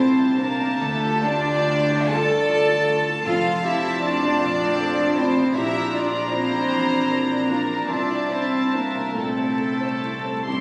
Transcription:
Already playing: double bass section C2, felt piano C2 A#2 C3 A3 D4 E4, viola section F3 G4, french horn section C4, cello section C4, clarinet E4, violin section C5 A5
0.00 felt piano A4
0.19 felt piano E4
0.37 french horn section A#3, cello section A#3, felt piano C4, clarinet D4, viola section G4, violin section A#4
0.61 felt piano C3
0.79 double bass section D2, felt piano D2, french horn section A3, cello section A3, clarinet D4, viola section F4, violin section A4
1.04 felt piano F4
1.24 cello section D4, french horn section D4, felt piano E4, clarinet F4, violin section D5
1.47 felt piano F4
1.68 felt piano A3
1.88 felt piano A2
2.07 felt piano G2, viola section F4, french horn section A4, cello section A4, clarinet D5, violin section A5
2.30 felt piano A3
2.50 felt piano A4
2.69 felt piano F4
2.88 felt piano A3
3.07 felt piano A2
3.25 double bass section F2, timpani F2, felt piano F2, viola section F3 C4, french horn section F4, cello section F4, clarinet A4, violin section F5 A5
3.46 felt piano F4
3.64 cello section E4, felt piano E4, french horn section E4, clarinet G4, violin section E5
3.84 felt piano F4
4.02 felt piano A3, cello section D4, french horn section D4, clarinet F4, violin section D5
4.22 felt piano C3
4.41 felt piano A#2
4.60 felt piano A3
4.80 felt piano A4
4.99 felt piano F4
5.17 felt piano A3, cello section C4, french horn section C4, clarinet E4, violin section C5
5.37 felt piano C3
5.54 double bass section A#1, felt piano A#1, viola section D4, cello section E4, french horn section E4, clarinet G4, violin section E5 A#5
5.75 felt piano F4
5.92 cello section D4, french horn section D4, felt piano E4, clarinet F4, violin section D5
6.13 felt piano F4
6.31 french horn section C4, cello section C4, felt piano D4, clarinet E4, violin section C5
6.52 felt piano F2
6.72 felt piano E2
6.91 felt piano D4
7.11 felt piano A#4
7.31 felt piano D5
7.49 french horn section A#3, cello section A#3, clarinet D4, felt piano F4, violin section A#4
7.70 felt piano D4
7.87 double bass section C2, felt piano C2, viola section C4 E5, french horn section D4, cello section D4, clarinet F4, violin section D5 A5
8.10 felt piano E4
8.29 french horn section C4, cello section C4, felt piano D4, clarinet E4, violin section C5
8.53 felt piano E4
8.72 french horn section A#3, cello section A#3, felt piano C4, clarinet D4, violin section A#4
8.95 felt piano C3
9.12 french horn section A3, violin section A5
9.16 felt piano A#2, cello section A3, viola section C4 E4, clarinet C4, violin section A4
9.38 felt piano C4
9.59 felt piano A4
9.81 felt piano C5
10.04 felt piano E4
10.25 felt piano C4
10.43 french horn section G3, violin section C6
10.48 felt piano C2, cello section G3, viola section C4 E4, clarinet C4, violin section G4

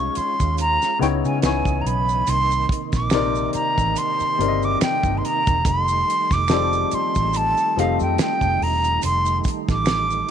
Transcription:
Already playing: upright piano G#3 C#4 D#4 F4 C#5, tonewheel organ G#3 C#4 F4, flute C#6
0.15 flute C6, muted fingered electric bass stroke, closed hi-hat, maracas
0.40 fingered electric bass D#2, kick, closed hi-hat, maracas
0.58 flute A#5, closed hi-hat, maracas
0.82 snare, maracas
0.99 fingered electric bass C#2, upright piano C#3 B3 D#4 E4 C#5, flute G5, snare, closed hi-hat
1.25 fingered electric bass C#3, flute G#5, closed hi-hat, maracas
1.42 fingered electric bass C#2, upright piano C#3 B3 D#4 E4 C#5, tonewheel organ E3 B3 D#5, flute G#5, finger snap, snare, closed hi-hat, maracas
1.65 fingered electric bass C#2, kick, maracas
1.81 flute A#5
1.86 fingered electric bass B1, flute B5, closed hi-hat
2.09 maracas
2.27 fingered electric bass C2, tonewheel organ C3 D#3 A#3 D#4, flute C6, closed hi-hat, maracas
2.51 maracas
2.69 kick, closed hi-hat
2.92 fingered electric bass A#1, flute D6, kick, snare, closed hi-hat, maracas
3.10 upright piano C3 C4 D#4 A#4, finger snap, snare, closed hi-hat, maracas
3.15 upright piano D5
3.35 maracas
3.53 flute A#5, muted fingered electric bass stroke, closed hi-hat, maracas
3.78 fingered electric bass A1, kick, maracas
3.96 flute C6, closed hi-hat, maracas
4.20 muted fingered electric bass stroke, maracas
4.38 fingered electric bass G1, upright piano C3 C4 D#4 A#4 D5, closed hi-hat
4.48 upright piano D#5
4.62 flute D6, maracas
4.81 flute G5, finger snap, muted fingered electric bass stroke, snare, closed hi-hat, maracas
5.03 fingered electric bass G1, kick, maracas
5.18 flute C6
5.25 flute A#5, closed hi-hat
5.47 fingered electric bass E1, kick, closed hi-hat, maracas
5.65 fingered electric bass F1, tonewheel organ D#3 G3 A3 D#4, flute C6, kick, closed hi-hat, maracas
5.88 maracas
6.10 closed hi-hat
6.31 fingered electric bass F1, flute D6, kick, snare, maracas
6.48 upright piano F3 C4 D#4 G4 A4, finger snap, snare, closed hi-hat, maracas
6.53 upright piano D5
6.73 maracas
6.91 flute C6, muted fingered electric bass stroke, closed hi-hat, maracas
7.15 fingered electric bass A1, kick, maracas
7.33 flute A5, closed hi-hat, maracas
7.58 maracas
7.76 fingered electric bass F1, upright piano F3 A3 C4 D#4 G4 D#5, flute F5, snare, closed hi-hat
8.00 fingered electric bass F2, flute G5, maracas
8.18 flute G5, finger snap, snare, closed hi-hat, maracas
8.41 fingered electric bass F1, kick, maracas
8.61 fingered electric bass E1, flute A#5, open hi-hat
8.84 closed hi-hat, maracas
9.02 fingered electric bass F1, flute C6, closed hi-hat, maracas
9.26 maracas
9.44 kick, closed hi-hat, maracas
9.69 fingered electric bass A1, flute D6, kick, snare, maracas
9.86 finger snap, snare, closed hi-hat, maracas
10.11 maracas

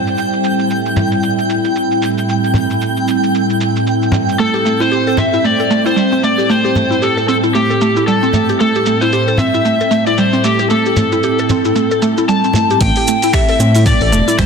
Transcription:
Already playing: ambient pad A2 G3 C4 E4 A4, synth texture G5
0.07 cabasa
0.18 cabasa
0.33 cabasa
0.44 cabasa
0.59 cabasa
0.70 cabasa
0.85 cabasa
0.96 frame drum, cabasa
1.12 cabasa
1.23 cabasa
1.38 cabasa
1.50 cabasa
1.65 cabasa
1.76 cabasa
1.91 cabasa
2.02 cabasa
2.18 cabasa
2.29 cabasa
2.44 cabasa
2.54 frame drum, cabasa
2.70 cabasa
2.81 cabasa
2.97 cabasa
3.08 cabasa
3.23 cabasa
3.35 cabasa
3.50 cabasa
3.61 cabasa
3.76 cabasa
3.87 cabasa
4.02 cabasa
4.12 frame drum, cabasa
4.29 cabasa
4.39 synth pluck A3, electric slide guitar A4, cabasa
4.54 synth pluck G4, cabasa
4.65 synth pluck A3, cabasa
4.80 synth pluck E4, electric slide guitar C5, cabasa
4.92 synth pluck G4, cabasa
5.07 synth pluck A4, cabasa
5.17 synth pluck C4, electric slide guitar E5, frame drum, cabasa
5.34 synth pluck E4, cabasa
5.45 synth pluck A3, electric slide guitar D5, cabasa
5.60 synth pluck A4, cabasa
5.71 synth pluck A3, cabasa
5.86 synth pluck E4, electric slide guitar C5, cabasa
5.96 synth pluck G3, cabasa
6.12 synth pluck C4, cabasa
6.24 synth pluck A3, electric slide guitar D5, cabasa
6.38 synth pluck G4, cabasa
6.50 synth pluck A3, electric slide guitar C5, cabasa
6.65 synth pluck G4, cabasa
6.75 synth pluck A3, frame drum, cabasa
6.91 synth pluck E4, cabasa
7.02 synth pluck G4, electric slide guitar A4, cabasa
7.17 synth pluck A4, cabasa
7.28 synth pluck C4, electric slide guitar A4, cabasa
7.43 synth pluck E4, cabasa
7.55 synth pluck A3, electric slide guitar G4, cabasa
7.70 synth pluck A4, cabasa
7.81 synth pluck A3, cabasa
7.96 synth pluck E4, cabasa
8.07 synth pluck G3, electric slide guitar A4, cabasa
8.23 synth pluck C4, cabasa
8.33 synth pluck A3, frame drum, cabasa
8.49 synth pluck G4, cabasa
8.60 synth pluck A3, electric slide guitar A4, cabasa
8.75 synth pluck G4, cabasa
8.86 synth pluck A3, cabasa
9.01 synth pluck E4, electric slide guitar C5, cabasa
9.13 synth pluck G4, cabasa
9.28 synth pluck A4, cabasa
9.38 synth pluck C4, electric slide guitar E5, frame drum, cabasa
9.54 synth pluck E4, cabasa
9.65 synth pluck A3, cabasa
9.80 synth pluck A4, cabasa
9.91 synth pluck A3, cabasa
10.07 synth pluck E4, electric slide guitar D5, cabasa
10.18 synth pluck G3, electric slide guitar C5, cabasa
10.33 synth pluck C4, cabasa
10.44 synth pluck A3, electric slide guitar G4, cabasa
10.59 synth pluck G4, cabasa
10.70 synth pluck A3, electric slide guitar A4, cabasa
10.86 synth pluck G4, cabasa
10.96 synth pluck A3, frame drum, cabasa
11.12 synth pluck E4, cabasa
11.23 synth pluck G4, cabasa
11.39 synth pluck A4, cabasa
11.49 synth pluck C4, frame drum, cabasa
11.65 synth pluck E4, cabasa
11.76 synth pluck A3, cabasa
11.91 synth pluck A4, cabasa
12.02 synth pluck A3, cabasa
12.18 synth pluck E4, cabasa
12.29 synth pluck G3, electric slide guitar A5, cabasa
12.44 synth pluck C4, cabasa
12.53 synth pluck A3, frame drum, cabasa
12.71 synth pluck G4, cabasa
12.81 analog synth bass A1, synth pluck A3, electric slide guitar G5, kick, open hi-hat, cabasa
12.93 ambient pad G3, open hi-hat
12.97 synth pluck G4
13.08 synth pluck A3, cabasa
13.22 synth pluck E4, open hi-hat, cabasa
13.33 synth pluck G4, electric slide guitar E5, finger snap, kick, open hi-hat, cabasa
13.49 synth pluck A4, open hi-hat
13.54 ambient pad E4
13.59 analog synth bass A2, synth pluck C4, cabasa
13.75 synth pluck E4, open hi-hat, cabasa
13.86 synth pluck A3, electric slide guitar D5, kick, open hi-hat, cabasa
14.00 analog synth bass A1, synth pluck A4, open hi-hat
14.11 analog synth bass E1, synth pluck A3, cabasa
14.28 synth pluck E4, cabasa
14.38 analog synth bass A1, synth pluck G3, electric slide guitar C5, finger snap, kick, open hi-hat, cabasa

